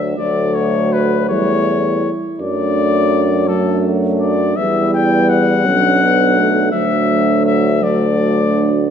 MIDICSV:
0, 0, Header, 1, 6, 480
1, 0, Start_track
1, 0, Tempo, 740741
1, 119, Time_signature, 6, 3, 24, 8
1, 1079, Tempo, 726392
1, 5862, End_track
2, 0, Start_track
2, 0, Title_t, "Cornet"
2, 0, Program_c, 0, 56
2, 111, Note_on_c, 0, 74, 73
2, 353, Note_on_c, 0, 73, 71
2, 363, Note_off_c, 0, 74, 0
2, 601, Note_on_c, 0, 71, 75
2, 611, Note_off_c, 0, 73, 0
2, 831, Note_off_c, 0, 71, 0
2, 834, Note_on_c, 0, 73, 81
2, 1368, Note_off_c, 0, 73, 0
2, 1562, Note_on_c, 0, 74, 81
2, 2274, Note_on_c, 0, 69, 67
2, 2284, Note_off_c, 0, 74, 0
2, 2517, Note_off_c, 0, 69, 0
2, 2755, Note_on_c, 0, 74, 78
2, 2996, Note_on_c, 0, 76, 82
2, 3006, Note_off_c, 0, 74, 0
2, 3237, Note_off_c, 0, 76, 0
2, 3243, Note_on_c, 0, 79, 79
2, 3473, Note_on_c, 0, 78, 91
2, 3483, Note_off_c, 0, 79, 0
2, 4414, Note_off_c, 0, 78, 0
2, 4418, Note_on_c, 0, 76, 82
2, 4894, Note_off_c, 0, 76, 0
2, 4906, Note_on_c, 0, 76, 85
2, 5153, Note_on_c, 0, 74, 75
2, 5163, Note_off_c, 0, 76, 0
2, 5862, Note_off_c, 0, 74, 0
2, 5862, End_track
3, 0, Start_track
3, 0, Title_t, "French horn section"
3, 0, Program_c, 1, 60
3, 117, Note_on_c, 1, 66, 65
3, 823, Note_off_c, 1, 66, 0
3, 839, Note_on_c, 1, 64, 61
3, 1559, Note_off_c, 1, 64, 0
3, 1561, Note_on_c, 1, 62, 59
3, 2281, Note_off_c, 1, 62, 0
3, 2289, Note_on_c, 1, 62, 67
3, 2990, Note_off_c, 1, 62, 0
3, 3002, Note_on_c, 1, 64, 57
3, 3688, Note_off_c, 1, 64, 0
3, 3725, Note_on_c, 1, 62, 66
3, 4423, Note_off_c, 1, 62, 0
3, 4431, Note_on_c, 1, 62, 55
3, 5043, Note_off_c, 1, 62, 0
3, 5155, Note_on_c, 1, 62, 62
3, 5862, Note_off_c, 1, 62, 0
3, 5862, End_track
4, 0, Start_track
4, 0, Title_t, "Euphonium"
4, 0, Program_c, 2, 58
4, 0, Note_on_c, 2, 62, 70
4, 96, Note_off_c, 2, 62, 0
4, 123, Note_on_c, 2, 57, 63
4, 826, Note_off_c, 2, 57, 0
4, 845, Note_on_c, 2, 57, 58
4, 1373, Note_off_c, 2, 57, 0
4, 1563, Note_on_c, 2, 57, 65
4, 2257, Note_off_c, 2, 57, 0
4, 2283, Note_on_c, 2, 57, 64
4, 2987, Note_off_c, 2, 57, 0
4, 3000, Note_on_c, 2, 59, 63
4, 3715, Note_on_c, 2, 61, 58
4, 3725, Note_off_c, 2, 59, 0
4, 3957, Note_on_c, 2, 59, 62
4, 3967, Note_off_c, 2, 61, 0
4, 4189, Note_on_c, 2, 57, 64
4, 4198, Note_off_c, 2, 59, 0
4, 4424, Note_off_c, 2, 57, 0
4, 4428, Note_on_c, 2, 57, 67
4, 5153, Note_on_c, 2, 54, 56
4, 5162, Note_off_c, 2, 57, 0
4, 5862, Note_off_c, 2, 54, 0
4, 5862, End_track
5, 0, Start_track
5, 0, Title_t, "Trombone"
5, 0, Program_c, 3, 57
5, 0, Note_on_c, 3, 54, 67
5, 93, Note_off_c, 3, 54, 0
5, 122, Note_on_c, 3, 54, 60
5, 843, Note_on_c, 3, 55, 52
5, 852, Note_off_c, 3, 54, 0
5, 1383, Note_off_c, 3, 55, 0
5, 1567, Note_on_c, 3, 54, 62
5, 2259, Note_off_c, 3, 54, 0
5, 2285, Note_on_c, 3, 54, 60
5, 2988, Note_off_c, 3, 54, 0
5, 3003, Note_on_c, 3, 55, 59
5, 3716, Note_on_c, 3, 54, 57
5, 3726, Note_off_c, 3, 55, 0
5, 4427, Note_off_c, 3, 54, 0
5, 4431, Note_on_c, 3, 54, 65
5, 5156, Note_on_c, 3, 57, 56
5, 5166, Note_off_c, 3, 54, 0
5, 5766, Note_off_c, 3, 57, 0
5, 5862, End_track
6, 0, Start_track
6, 0, Title_t, "Tuba"
6, 0, Program_c, 4, 58
6, 0, Note_on_c, 4, 38, 62
6, 95, Note_off_c, 4, 38, 0
6, 118, Note_on_c, 4, 38, 65
6, 842, Note_on_c, 4, 40, 58
6, 851, Note_off_c, 4, 38, 0
6, 1382, Note_off_c, 4, 40, 0
6, 1563, Note_on_c, 4, 42, 62
6, 2976, Note_off_c, 4, 42, 0
6, 3001, Note_on_c, 4, 40, 64
6, 3718, Note_on_c, 4, 35, 64
6, 3728, Note_off_c, 4, 40, 0
6, 4428, Note_off_c, 4, 35, 0
6, 4432, Note_on_c, 4, 38, 65
6, 5852, Note_off_c, 4, 38, 0
6, 5862, End_track
0, 0, End_of_file